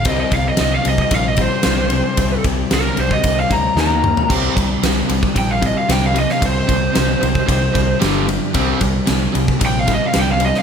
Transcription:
<<
  \new Staff \with { instrumentName = "Lead electric guitar" } { \time 4/4 \key c \minor \tempo 4 = 113 ees''16 ees''16 f''16 ees''16 ees''16 f''16 ees''16 ees''16 f''16 ees''16 c''4.~ | c''8 r8 bes'8 c''16 ees''8 f''16 bes''8 bes''4 | r2 g''16 f''16 ees''16 f''16 g''16 f''16 ees''16 f''16 | c''2. r4 |
r2 g''16 f''16 ees''16 f''16 g''16 f''16 ees''16 f''16 | }
  \new Staff \with { instrumentName = "Tonewheel organ" } { \time 4/4 \key c \minor << { d''1~ | d''2. f''4 | d''1 | ees''2. r4 |
d''1 | } \\ { <c' g'>1~ | <c' g'>2. <ees' bes'>4 | <c' g'>1~ | <c' g'>2. <g d'>4 |
c'1 | } >> }
  \new Staff \with { instrumentName = "Overdriven electric guitar" } { \clef bass \time 4/4 \key c \minor <c g c'>8 <c g>8 <c g>8 <c g>8 <c g>8 <c g>8 <c g>8 <c g>8 | <c g>8 <c g>8 <c g>8 <c g>8 <c g>8 <c g>8 <ees bes ees'>8 <ees bes>8 | <c g c'>8 <c g>8 <c g>8 <c g>8 <c g>8 <c g>8 <c g>8 <c g>8 | <c g>8 <c g>8 <c g>8 <c g>8 <c g>8 <c g>8 <g, d g>8 <g, d>8 |
<c g c'>8 <c g>8 <c g>8 <c g>8 <c g>8 <c g>8 <c g>8 <c g>8 | }
  \new Staff \with { instrumentName = "Distorted electric guitar" } { \clef bass \time 4/4 \key c \minor r1 | r1 | <c g c'>8 <c g>8 <c g>8 <c g>8 <c g>8 <c g>8 <c g>8 <c g>8 | <c g>8 <c g>8 <c g>8 <c g>8 <c g>8 <c g>8 <g, d g>8 <g, d>8 |
<c g c'>8 <c g>8 <c g>8 <c g>8 <c g>8 <c g>8 <c g>8 <c g>8 | }
  \new Staff \with { instrumentName = "Picked electric bass" } { \clef bass \time 4/4 \key c \minor c,8 c,8 c,8 c,8 bes,,4 c,4 | c,8 c,8 c,8 c,8 c,8 d,8 ees,4 | c,8 c,8 c,8 c,8 bes,,4 c,4 | c,8 c,8 c,8 c,8 c,8 c,8 g,,4 |
c,8 c,8 c,8 c,8 bes,,4 c,4 | }
  \new DrumStaff \with { instrumentName = "Drums" } \drummode { \time 4/4 <bd cymr>8 <bd cymr>8 <cymr sn>8 cymr16 bd16 <bd cymr>8 <bd cymr>8 <cymr sn>8 cymr8 | <bd cymr>8 <bd cymr>8 <cymr sn>8 cymr16 bd16 <bd cymr>8 <bd cymr>8 sn16 tommh16 toml16 tomfh16 | <cymc bd>8 <bd cymr>8 <cymr sn>8 cymr16 bd16 <bd cymr>8 <bd cymr>8 <cymr sn>8 cymr16 sn16 | <bd cymr>8 <bd cymr>8 <cymr sn>8 cymr16 bd16 <bd cymr>8 <bd cymr>8 <cymr sn>8 cymr8 |
<bd cymr>8 <bd cymr>8 <cymr sn>8 cymr16 bd16 <bd cymr>8 <bd cymr sn>8 <cymr sn>8 cymr16 sn16 | }
>>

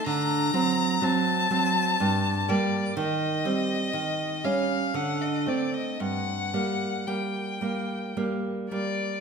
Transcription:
<<
  \new Staff \with { instrumentName = "Violin" } { \time 3/4 \key g \minor \tempo 4 = 60 bes''4 a''4. d''8 | ees''4. f''8 fis''16 ees''16 d''16 ees''16 | fis''4 g''4 r8 d''8 | }
  \new Staff \with { instrumentName = "Nylon-string guitar" } { \clef bass \time 3/4 \key g \minor d8 <fis c'>8 <fis c'>8 <fis c'>8 g,8 <g bes>8 | ees8 <g c'>8 ees8 <g des'>8 d8 <a c'>8 | g,8 <g bes>8 <g bes>8 <g bes>8 <g bes>8 <g bes>8 | }
>>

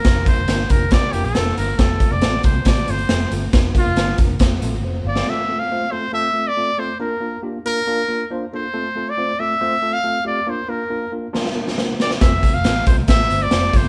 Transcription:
<<
  \new Staff \with { instrumentName = "Trumpet" } { \time 4/4 \key f \major \tempo 4 = 138 bes'8 c''4 bes'8 d''8 g'16 a'8. bes'8 | a'8. d''8. c''8 d''8 c''4 r8 | r8 f'4 r2 d''8 | e''8. f''8. c''8 e''8. d''8. c''8 |
bes'4 r8 bes'4. r8 c''8~ | c''8. d''8. e''4~ e''16 f''8. d''8 | c''8 bes'4 r2 d''8 | e''8. f''8. c''8 e''8. d''8. c''16 r16 | }
  \new Staff \with { instrumentName = "Tine electric piano" } { \time 4/4 \key f \major << { r1 | r1 | r2. <a' c''>8 <d'' f''>8~ | <d'' f''>8 r2. r8 |
r1 | r1 | r1 | r1 | } \\ { <bes d' f' bes'>8 <bes d' f' bes'>8 <bes d' f' bes'>8 <bes d' f' bes'>8 <bes d' f' bes'>8 <bes d' f' bes'>8 <bes d' f' bes'>8 <bes d' f' bes'>8 | <a c' f' a'>8 <a c' f' a'>8 <a c' f' a'>8 <a c' f' a'>8 <a c' f' g'>8 <a c' f' a'>8 <a c' f' a'>8 <a c' f' a'>8 | <bes d' f' bes'>8 <bes d' f' bes'>8 <bes d' f' bes'>8 <bes d' f' bes'>8 <a c' f' a'>8 <a c' f' a'>8 r4 | <a c' f' a'>8 <a c' f' a'>8 <a c' f' c''>8 <a c' f' a'>8 <a c' f' a'>8 <a c' f' a'>8 <a c' f' a'>8 <a c' f' a'>8 |
<bes d' f' bes'>8 <bes d' f' bes'>8 <bes d' f' g'>8 <bes d' f' bes'>8 <bes d' f' bes'>8 <bes d' f' bes'>8 <bes d' f' c''>8 <bes d' f' a'>8 | <a c' f' a'>8 <a c' f' a'>8 <a c' f' c''>8 <a c' f' a'>8 <a c' f' c''>8 <a c' f' a'>8 <a c' f' a'>8 <a c' f' g'>8 | <bes d' f' bes'>8 <bes d' f' bes'>8 <bes d' f' bes'>8 <bes d' f' bes'>8 <bes d' f' bes'>8 <bes d' f' bes'>8 <bes d' f' bes'>8 <bes d' f' bes'>8 | <a c' f' a'>8 <a c' f' a'>8 <a c' f' a'>8 <a c' f' a'>8 <a c' f' a'>8 <a c' f' c''>8 <a c' f' c''>8 <a c' f' a'>8 | } >> }
  \new Staff \with { instrumentName = "Fingered electric bass" } { \clef bass \time 4/4 \key f \major f,,8. f,,16 g,,8 f,,8. r16 f,,16 bes,,16 f,,8 g,,8 | f,,8 r16 f,,16 a,,8 c,8 a,,8 g,,8 f,,8 g,,8 | f,,8 r16 f,,16 g,,8 f,,8 f,,8 bes,,16 a,,16 f,,8 g,,8 | r1 |
r1 | r1 | r1 | f,,8 r16 f,,16 a,,8 c,8 a,,8 g,,8 f,,8 g,,8 | }
  \new DrumStaff \with { instrumentName = "Drums" } \drummode { \time 4/4 <hh bd sn>8 <hh bd>8 <hh sn>8 <hh bd>8 <hh bd sn>8 hh16 hh16 <hh sn>8 hh8 | <hh bd sn>8 <hh bd>8 <hh sn>8 <hh bd>8 <hh bd sn>16 hh16 hh16 hh16 <hh sn>8 hh8 | <hh bd sn>8 <hh bd>8 <hh sn>8 <hh bd>8 <hh bd sn>8 hh8 r8. sn16 | r4 r4 r4 r4 |
r4 r4 r4 r4 | r4 r4 r4 r4 | r4 r4 sn16 sn8 sn16 sn8 sn16 sn16 | <hh bd sn>8 <hh bd>8 <hh sn>8 <hh bd>8 <hh bd sn>8 hh8 <hh sn>8 <hh bd sn>8 | }
>>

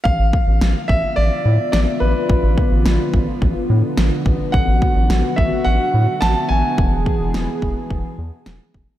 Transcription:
<<
  \new Staff \with { instrumentName = "Grand piano" } { \time 4/4 \key d \lydian \tempo 4 = 107 f''4. e''8 d''4 d''8 b'8~ | b'2.~ b'8 r8 | fis''4. e''8 fis''4 a''8 gis''8~ | gis''2. r4 | }
  \new Staff \with { instrumentName = "Analog synth pad" } { \time 4/4 \key d \lydian << { f'1~ | f'1 | fis'1 | gis'1 | } \\ { <d b>1~ | <d b>1~ | <d b>1 | <e b>1 | } >> }
  \new Staff \with { instrumentName = "Analog synth bass" } { \clef bass \time 4/4 \key d \lydian a,,16 a,,16 r16 a,,16 a,,16 r16 a,,16 r16 a,,16 r16 a,16 r16 a,,16 r16 a,,16 r16 | a,,16 a,,16 r16 a,,16 a,,16 r16 a,,16 r16 a,,16 r16 a,16 r16 a,,16 r16 a,,16 r16 | a,,16 a,,16 r16 a,,16 a,,16 r16 a,,16 r16 a,,16 r16 a,16 r16 a,,16 r16 a,,16 r16 | e,,16 e,,16 r16 e,,16 e,,16 r16 e,,16 r16 e,,16 r16 e,16 r16 e,,16 r16 e,,16 r16 | }
  \new DrumStaff \with { instrumentName = "Drums" } \drummode { \time 4/4 bd8 bd8 sn8 bd8 r4 sn4 | bd8 bd8 sn8 bd8 bd4 sn8 bd8 | bd8 bd8 sn8 bd8 r4 sn4 | bd8 bd8 sn8 bd8 bd4 sn8 bd8 | }
>>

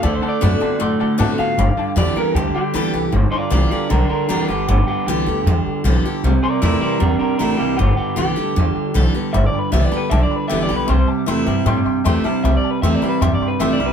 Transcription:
<<
  \new Staff \with { instrumentName = "Upright piano" } { \time 4/4 \key g \major \tempo 4 = 155 <d'' fis'' a''>8 <d'' fis'' a''>8 <d'' fis'' b''>8 <d'' fis'' a''>8 <d'' fis'' c'''>8 <d'' fis'' a''>8 <d'' fis'' a''>8 <d'' fis'' a''>8 | <d'' g'' b''>8 <d'' g'' a''>8 <d'' g'' b''>8 <d'' g'' d'''>8 <d'' g'' a''>8 <d'' g'' d'''>8 <d'' g'' b''>8 <d'' g'' b''>8 | r1 | r1 |
r1 | r1 | <d'' g'' b''>8 <d'' g'' b''>8 <d'' g'' b''>8 <d'' g'' b''>8 <d'' g'' a''>8 <d'' g'' b''>8 <d'' g'' d'''>8 <d'' g'' b''>8 | <e'' g'' c'''>8 <e'' g'' a''>8 <e'' g'' c'''>8 <e'' g'' d'''>8 <e'' g'' c'''>8 <e'' g'' c'''>8 <e'' g'' c'''>8 <e'' g'' a''>8 |
<e'' g'' b''>8 <e'' g'' a''>8 <e'' g'' c'''>8 <e'' g'' b''>8 <e'' g'' c'''>8 <e'' g'' c'''>8 <e'' g'' c'''>8 <e'' g'' b''>8 | }
  \new Staff \with { instrumentName = "Clean electric guitar" } { \time 4/4 \key g \major \tuplet 3/2 { d''8 c''8 d''8~ } d''4. r4 f''8~ | f''4 d''8 bes'8 g'8 g'4. | r8 <f' d''>8 <f' d''>8 <f' d''>8 <d' bes'>8 <d' bes'>8 <d' bes'>8 <b g'>8 | <b g'>8 <b g'>8 g'2 r4 |
r8 <bes' d''>8 <bes' d''>8 <bes' d''>8 <d' bes'>8 <d' bes'>8 <d' bes'>8 <bes g'>8 | <b g'>8 <b g'>8 g'2 r4 | \tuplet 3/2 { e''8 d''8 b'8 e''8 d''8 b'8 e''8 d''8 b'8 e''8 d''8 b'8 } | c''8 r2. r8 |
\tuplet 3/2 { e''8 d''8 b'8 e''8 d''8 b'8 e''8 d''8 b'8 e''8 d''8 b'8 } | }
  \new Staff \with { instrumentName = "Steel-string acoustic guitar" } { \time 4/4 \key g \major << { r4 <d a c' fis'>8 <c' fis'>8 r4 <d a c' fis'>8 <c' fis'>8 | r4 <d g b g'>8 <b g'>8 r4 <d g b g'>8 <b g'>8 | r4 <d g b g'>8 <b g'>8 r4 <d g b g'>8 <b g'>8 | r4 <d g b g'>8 <b g'>8 r4 <d g b g'>8 <b g'>8 |
r4 <e g c' e'>4 r4 <e g c' e'>4 | r4 <d g b g'>8 <b g'>8 r4 <d g b g'>8 <b g'>8 | r4 <d g b g'>8 <b g'>8 r4 <d g b g'>8 <b g'>8 | r4 <e g c' e'>8 <c' e'>8 r4 <e g c' e'>8 <c' e'>8 |
r4 <e g c' e'>8 <c' e'>8 r4 <e g c' e'>8 <c' e'>8 | } \\ { d2 a,2 | g,2 d2 | g,2 d2 | g,2 d2 |
c2 g,2 | g,2 d2 | g,2 d2 | c2 g,2 |
c2 g,2 | } >> }
  \new Staff \with { instrumentName = "Clean electric guitar" } { \clef bass \time 4/4 \key g \major <d a>8 <d a>8 <d b>8 <d b>8 <d a>8 <d a>8 <d b>8 <d b>8 | <g, d>8 <g, d>8 <g, e>8 <g, e>8 <g, d>8 <g, d>8 <g, e>8 <g, e>8 | <g, d>4 <g, e>8 <g, d>8 <g, d>4 <g, e>8 <g, d>8 | <g, d>4 <g, e>8 <g, d>8 <g, d>4 <g, e>8 <g, d>8 |
<c g>4 <c a>8 <c g>8 <c g>4 <c a>8 <c g>8 | <g, d>4 <g, e>8 <g, d>8 <g, d>4 <g, e>8 <g, d>8 | <g, d>4 <g, e>8 <g, d>8 <g, d>4 <g, e>8 <g, d>8 | <c g>4 <c a>8 <c g>8 <c g>4 <c a>8 <c g>8 |
<c g>4 <c a>8 <c g>8 <c g>4 <c a>8 <c g>8 | }
  \new Staff \with { instrumentName = "Upright bass" } { \clef bass \time 4/4 \key g \major d,8 r8 fis,8 r8 fis,8 a,8 a,8 r8 | g,,8 r8 e,8 r8 d,8 r8 d,8 c,8 | g,,8 r8 c,8 r8 b,,8 r8 e,,8 g,,8 | g,,8 r8 c,8 d,8 e,8 r8 b,,8 r8 |
c,8 r8 e,8 r8 e,8 r8 a,,8 c,8 | g,,8 r8 c,8 d,8 e,8 r8 b,,8 r8 | g,,8 r8 c,8 r8 b,,8 r8 e,,8 b,,8 | c,8 r8 e,8 g,8 a,8 r8 e,8 r8 |
c,8 r8 e,8 r8 e,8 r8 a,,8 c,8 | }
>>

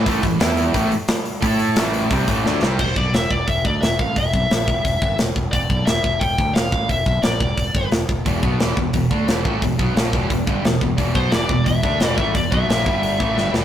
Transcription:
<<
  \new Staff \with { instrumentName = "Lead electric guitar" } { \time 4/4 \key e \minor \tempo 4 = 176 r1 | r1 | c''8 d''8 e''8 d''8 e''8 d''8 e''8 f''8 | e''2. r4 |
d''4 e''4 g''4 f''4 | e''4 d''2 r4 | r1 | r1 |
r8 c''8 d''4 e''4. e''8 | d''8 e''2. r8 | }
  \new Staff \with { instrumentName = "Overdriven electric guitar" } { \clef bass \time 4/4 \key e \minor <a, e a>8 <a, e>8 <e b e'>4 <a, e a>8 r4. | <a e' a'>4 <a, e a>4 <c g c'>8 <a, e a>8 <d a d'>8 <c g c'>8 | r1 | r1 |
r1 | r1 | r1 | r1 |
r1 | r1 | }
  \new Staff \with { instrumentName = "Distorted electric guitar" } { \clef bass \time 4/4 \key e \minor <a, e a>8 <a, e>8 <e b e'>4 <a, e a>8 r4. | <a e' a'>4 <a, e a>4 <c g c'>8 <a, e a>8 <d a d'>8 <c g c'>8 | r1 | r1 |
r1 | r1 | <e, b, e>8 <b, fis b>8 <e, b, e>8 <e, b,>8 <e, b,>8 <d a d'>8 <e, b, e>8 <a, e a>8 | <e, b,>8 <b, fis b>8 <ais, f ais>8 <e, b, e>8 <e, b,>8 <g, d g>8 <e, b,>8 <e, b,>8 |
<e, b, e>8 <b, fis b>8 <e, b, e>8 <e, b,>8 <e, b,>8 <d a d'>8 <e, b, e>8 <a, e a>8 | <e, b,>8 <b, fis b>8 <ais, f ais>8 <g, d g>4 <a, e a>8 <g, d g>8 <e, b, e>8 | }
  \new Staff \with { instrumentName = "Distorted electric guitar" } { \clef bass \time 4/4 \key e \minor <a, e a>8 <a, e>8 <e b e'>4 <a, e a>8 r4. | <a e' a'>4 <a, e a>4 <c g c'>8 <a, e a>8 <d a d'>8 <c g c'>8 | r1 | r1 |
r1 | r1 | <e, b, e>8 <b, fis b>8 <e, b, e>8 <e, b,>8 <e, b,>8 <d a d'>8 <e, b, e>8 <a, e a>8 | <e, b,>8 <b, fis b>8 <ais, f ais>8 <e, b, e>8 <e, b,>8 <g, d g>8 <e, b,>8 <e, b,>8 |
<e, b, e>8 <b, fis b>8 <e, b, e>8 <e, b,>8 <e, b,>8 <d a d'>8 <e, b, e>8 <a, e a>8 | <e, b,>8 <b, fis b>8 <ais, f ais>8 <g, d g>4 <a, e a>8 <g, d g>8 <e, b, e>8 | }
  \new Staff \with { instrumentName = "Fingered electric bass" } { \clef bass \time 4/4 \key e \minor a,,8 a,,8 e,4 a,,8 r4. | a,4 a,,4 c,8 a,,8 d,8 c,8 | e,,8 b,,8 e,,8 e,,8 e,,8 d,8 e,,8 a,,8 | e,,8 b,,8 ais,,8 e,,8 e,,8 g,,8 e,,8 e,,8 |
e,,8 b,,8 e,,8 e,,8 e,,8 d,8 e,,8 a,,8 | e,,8 b,,8 ais,,8 e,,8 e,,8 g,,8 e,,8 e,,8 | e,,8 b,,8 e,,8 e,,8 e,,8 d,8 e,,8 a,,8 | e,,8 b,,8 ais,,8 e,,8 e,,8 g,,8 e,,8 e,,8 |
e,,8 b,,8 e,,8 e,,8 e,,8 d,8 e,,8 a,,8 | e,,8 b,,8 ais,,8 g,,4 a,,8 g,,8 e,,8 | }
  \new DrumStaff \with { instrumentName = "Drums" } \drummode { \time 4/4 <hho bd>8 <hho bd>8 <hho sn>8 hho8 <hho bd>8 hho8 <hho sn>8 hho8 | <hho bd>8 hho8 <hho sn>8 hho8 <hho bd>8 <hho bd>8 sn8 sn8 | <cymc bd>8 bd8 <hho sn>8 bd8 <hho bd>8 bd8 <hho sn>8 bd8 | <hho bd>8 bd8 <hho sn>8 bd8 <hho bd>8 bd8 <hho sn>8 bd8 |
<hho bd>8 bd8 <hho sn>8 bd8 <hho bd>8 bd8 <hho sn>8 bd8 | <hho bd>8 bd8 <hho sn>8 bd8 <hho bd>8 bd8 <hho sn>8 bd8 | <hho bd>8 bd8 <hho sn>8 bd8 <hho bd>8 bd8 <hho sn>8 bd8 | <hho bd>8 bd8 <hho sn>8 bd8 <hho bd>8 bd8 <hho sn>8 bd8 |
<hho bd>8 bd8 <hho sn>8 bd8 <hho bd>8 bd8 <hho sn>8 bd8 | <hho bd>8 bd8 <hho sn>8 bd8 hho8 bd8 sn8 sn8 | }
>>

